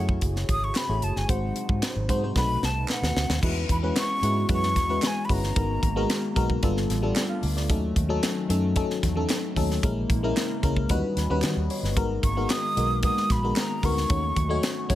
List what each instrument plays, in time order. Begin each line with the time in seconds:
Already playing: fingered electric bass F#2, analog synth pad C#3 A3 E4 F#4 G#4, fm electric piano A3 E4 F#4 G#4 C#5, flute F#5
0.09 kick
0.21 fingered electric bass F#1, kick, closed hi-hat
0.36 snare
0.49 fingered electric bass G#1, flute D#6, kick, closed hi-hat
0.64 flute C#6
0.74 flute B5, snare, clap, closed hi-hat
0.88 fingered electric bass A1, fm electric piano A3 E4 F#4 G#4 C#5
1.02 fingered electric bass F#1, flute A5, closed hi-hat
1.16 fingered electric bass G1, flute G#5, snare
1.28 fingered electric bass G#1, analog synth pad C3 F#3 D#4, fm electric piano G#3 C4 D#4 F#4 C5, flute F#5, kick, closed hi-hat
1.56 closed hi-hat
1.69 fingered electric bass G#2, kick
1.82 snare, clap, closed hi-hat
1.96 fingered electric bass G#1
2.09 fingered electric bass G#2, fm electric piano G#3 C4 D#4 F#4 C5, kick, closed hi-hat
2.23 fm electric piano G#3 C4 D#4 F#4 C5
2.36 fingered electric bass B1, analog synth pad B2 A3, fm electric piano A3 C4 D#4 F#4 B4, flute B5, kick, snare
2.62 fingered electric bass C2, flute A5, snare
2.88 flute F#5, snare, clap
3.02 fingered electric bass D#2, snare
3.16 fingered electric bass D2, snare
3.29 fingered electric bass D#2, snare
3.42 fingered electric bass E2, analog synth pad E3 G#3 B3 C#4 F#4, fm electric piano G#3 C#4 E4 F#4 B4, kick, crash
3.69 fingered electric bass E2, flute B5, kick, closed hi-hat
3.83 fm electric piano G#3 C#4 E4 F#4 B4
3.96 flute C#6, snare, clap, closed hi-hat
4.22 fingered electric bass G#2, fm electric piano G#3 C#4 E4 F#4 B4, closed hi-hat
4.49 fingered electric bass F#2, fm electric piano G#3 C#4 E4 F#4 B4, kick, closed hi-hat
4.53 flute C#6
4.63 snare
4.76 fingered electric bass E2, kick, snare, closed hi-hat
4.89 fm electric piano G#3 C#4 E4 F#4 B4
5.02 snare, clap, closed hi-hat
5.07 flute G#5
5.25 flute B5
5.29 fingered electric bass G1, fm electric piano G#3 C#4 E4 F#4 B4, flute A#5, kick, open hi-hat
5.44 snare
5.55 fingered electric bass G#1, analog synth pad D#3 A#3, fm electric piano G#3 B3 D#4 F#4 A#4, kick, closed hi-hat
5.83 fingered electric bass G#1, kick, closed hi-hat
5.96 fm electric piano G#3 B3 D#4 F#4 A#4
6.10 snare, clap, closed hi-hat
6.36 fingered electric bass B1, fm electric piano G#3 B3 D#4 F#4 A#4, kick, closed hi-hat
6.50 kick
6.63 fingered electric bass G1, analog synth pad D3 G3 A3 B3 F4, fm electric piano G3 B3 D4 F4 A4, kick, closed hi-hat
6.77 snare
6.90 fingered electric bass A1, snare, closed hi-hat
7.02 fm electric piano G3 B3 D4 F4 A4
7.15 fm electric piano D5 A5, snare, clap, closed hi-hat
7.29 fm electric piano F5
7.43 fingered electric bass D2, open hi-hat
7.57 fm electric piano D5, snare
7.69 fingered electric bass D#2, analog synth pad D#3 F#3 C#4 F#4, fm electric piano F#3 A3 C#4 D#4 A4, kick, closed hi-hat
7.96 fingered electric bass D#2, kick, closed hi-hat
8.09 fm electric piano F#3 A3 C#4 D#4 A4
8.23 snare, clap, closed hi-hat
8.49 fingered electric bass F#2, fm electric piano F#3 A3 C#4 D#4 A4, closed hi-hat
8.76 fm electric piano F#3 A3 C#4 D#4 A4, kick, closed hi-hat
8.90 snare
9.03 fingered electric bass E2, kick, snare, closed hi-hat
9.16 fm electric piano F#3 A3 C#4 D#4 A4
9.29 snare, clap, closed hi-hat
9.56 fingered electric bass D#2, fm electric piano F#3 A3 C#4 D#4 A4, kick, open hi-hat
9.71 snare
9.83 fingered electric bass A#1, analog synth pad C#3 E3 G#3 A#3 E4, fm electric piano G#3 A#3 C#4 E4 A#4, kick, closed hi-hat
10.10 fingered electric bass A#1, kick, closed hi-hat
10.23 fm electric piano G#3 A#3 C#4 E4 A#4
10.37 snare, clap, closed hi-hat
10.63 fingered electric bass C#2, fm electric piano G#3 A#3 C#4 E4 A#4, kick, closed hi-hat
10.77 kick
10.89 fingered electric bass D#2, analog synth pad D#3 G3 B3 C#4 F#4, fm electric piano G3 C#4 D#4 F#4 B4, kick, closed hi-hat
11.17 fingered electric bass D#2, snare, closed hi-hat
11.30 fingered electric bass D#2, fm electric piano G3 C#4 D#4 F#4 B4
11.42 fingered electric bass D#3, fm electric piano D#5, snare, clap, closed hi-hat
11.56 fingered electric bass D#2
11.70 fm electric piano C#5, open hi-hat
11.83 fingered electric bass G1, fm electric piano B4, snare
11.96 fingered electric bass G#1, analog synth pad D#3 G#3 A#3, fm electric piano G#3 B3 D#4 F#4 A#4, kick, closed hi-hat
12.23 fingered electric bass G#1, flute C#6, kick, closed hi-hat
12.37 fm electric piano G#3 B3 D#4 F#4 A#4
12.50 flute D#6, snare, clap, closed hi-hat
12.76 fingered electric bass B1, fm electric piano G#3 B3 D#4 F#4 A#4, closed hi-hat
13.03 fm electric piano G#3 B3 D#4 F#4 A#4, flute D#6, kick, closed hi-hat
13.17 snare
13.30 fingered electric bass A#1, flute B5, kick, snare, closed hi-hat
13.43 fm electric piano G#3 B3 D#4 F#4 A#4
13.56 flute A#5, snare, clap, closed hi-hat
13.83 fingered electric bass D2, fm electric piano G#3 B3 D#4 F#4 A#4, flute C#6, kick, open hi-hat
13.97 snare
14.09 fingered electric bass D#2, analog synth pad F#3 A3 C#4, fm electric piano A3 C#4 D#4 F#4 C#5, kick, closed hi-hat
14.36 fingered electric bass D#2, kick, closed hi-hat
14.49 fm electric piano A3 C#4 D#4 F#4 C#5
14.63 snare, clap, closed hi-hat
14.89 fingered electric bass F#2, fm electric piano A3 C#4 D#4 F#4 C#5, kick, closed hi-hat